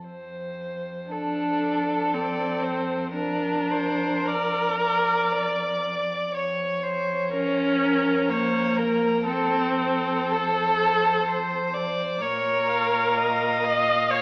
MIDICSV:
0, 0, Header, 1, 5, 480
1, 0, Start_track
1, 0, Key_signature, -1, "major"
1, 0, Tempo, 1052632
1, 34, Time_signature, 3, 2, 24, 8
1, 514, Tempo, 1006711
1, 1474, Tempo, 1125704
1, 1954, Tempo, 1054482
1, 2434, Tempo, 1011804
1, 3394, Tempo, 958466
1, 4354, Tempo, 1054482
1, 4834, Tempo, 944882
1, 6816, End_track
2, 0, Start_track
2, 0, Title_t, "Violin"
2, 0, Program_c, 0, 40
2, 515, Note_on_c, 0, 69, 50
2, 1455, Note_off_c, 0, 69, 0
2, 1476, Note_on_c, 0, 70, 47
2, 1717, Note_on_c, 0, 72, 54
2, 1724, Note_off_c, 0, 70, 0
2, 1959, Note_on_c, 0, 74, 58
2, 1966, Note_off_c, 0, 72, 0
2, 2194, Note_off_c, 0, 74, 0
2, 2197, Note_on_c, 0, 74, 60
2, 2920, Note_on_c, 0, 73, 53
2, 2927, Note_off_c, 0, 74, 0
2, 3151, Note_on_c, 0, 72, 60
2, 3158, Note_off_c, 0, 73, 0
2, 3389, Note_off_c, 0, 72, 0
2, 3392, Note_on_c, 0, 70, 60
2, 3876, Note_on_c, 0, 73, 64
2, 3883, Note_off_c, 0, 70, 0
2, 4109, Note_on_c, 0, 70, 56
2, 4117, Note_off_c, 0, 73, 0
2, 4352, Note_off_c, 0, 70, 0
2, 4356, Note_on_c, 0, 69, 60
2, 5326, Note_on_c, 0, 72, 60
2, 5333, Note_off_c, 0, 69, 0
2, 5557, Note_on_c, 0, 74, 59
2, 5565, Note_off_c, 0, 72, 0
2, 5799, Note_on_c, 0, 73, 63
2, 5807, Note_off_c, 0, 74, 0
2, 6282, Note_on_c, 0, 75, 65
2, 6290, Note_off_c, 0, 73, 0
2, 6760, Note_on_c, 0, 73, 59
2, 6767, Note_off_c, 0, 75, 0
2, 6816, Note_off_c, 0, 73, 0
2, 6816, End_track
3, 0, Start_track
3, 0, Title_t, "Violin"
3, 0, Program_c, 1, 40
3, 32, Note_on_c, 1, 72, 44
3, 511, Note_on_c, 1, 69, 43
3, 518, Note_off_c, 1, 72, 0
3, 997, Note_on_c, 1, 74, 51
3, 1004, Note_off_c, 1, 69, 0
3, 1231, Note_on_c, 1, 72, 51
3, 1238, Note_off_c, 1, 74, 0
3, 1470, Note_off_c, 1, 72, 0
3, 1473, Note_on_c, 1, 70, 48
3, 2434, Note_on_c, 1, 74, 57
3, 2442, Note_off_c, 1, 70, 0
3, 2664, Note_off_c, 1, 74, 0
3, 2667, Note_on_c, 1, 74, 52
3, 2908, Note_on_c, 1, 73, 52
3, 2915, Note_off_c, 1, 74, 0
3, 3868, Note_on_c, 1, 72, 66
3, 3876, Note_off_c, 1, 73, 0
3, 4113, Note_on_c, 1, 70, 56
3, 4120, Note_off_c, 1, 72, 0
3, 4352, Note_on_c, 1, 69, 60
3, 4359, Note_off_c, 1, 70, 0
3, 4586, Note_on_c, 1, 72, 55
3, 4593, Note_off_c, 1, 69, 0
3, 5795, Note_on_c, 1, 73, 60
3, 5802, Note_off_c, 1, 72, 0
3, 6033, Note_on_c, 1, 77, 57
3, 6041, Note_off_c, 1, 73, 0
3, 6816, Note_off_c, 1, 77, 0
3, 6816, End_track
4, 0, Start_track
4, 0, Title_t, "Viola"
4, 0, Program_c, 2, 41
4, 508, Note_on_c, 2, 62, 67
4, 999, Note_on_c, 2, 60, 59
4, 1006, Note_off_c, 2, 62, 0
4, 1470, Note_off_c, 2, 60, 0
4, 1473, Note_on_c, 2, 62, 69
4, 1951, Note_on_c, 2, 70, 74
4, 1957, Note_off_c, 2, 62, 0
4, 2676, Note_off_c, 2, 70, 0
4, 3392, Note_on_c, 2, 61, 79
4, 3871, Note_on_c, 2, 58, 75
4, 3879, Note_off_c, 2, 61, 0
4, 4350, Note_off_c, 2, 58, 0
4, 4356, Note_on_c, 2, 60, 82
4, 4838, Note_on_c, 2, 69, 83
4, 4846, Note_off_c, 2, 60, 0
4, 5556, Note_off_c, 2, 69, 0
4, 5794, Note_on_c, 2, 70, 81
4, 6524, Note_on_c, 2, 75, 80
4, 6532, Note_off_c, 2, 70, 0
4, 6761, Note_on_c, 2, 73, 73
4, 6769, Note_off_c, 2, 75, 0
4, 6816, Note_off_c, 2, 73, 0
4, 6816, End_track
5, 0, Start_track
5, 0, Title_t, "Cello"
5, 0, Program_c, 3, 42
5, 30, Note_on_c, 3, 41, 45
5, 2896, Note_off_c, 3, 41, 0
5, 2913, Note_on_c, 3, 41, 55
5, 5792, Note_on_c, 3, 46, 62
5, 5800, Note_off_c, 3, 41, 0
5, 6816, Note_off_c, 3, 46, 0
5, 6816, End_track
0, 0, End_of_file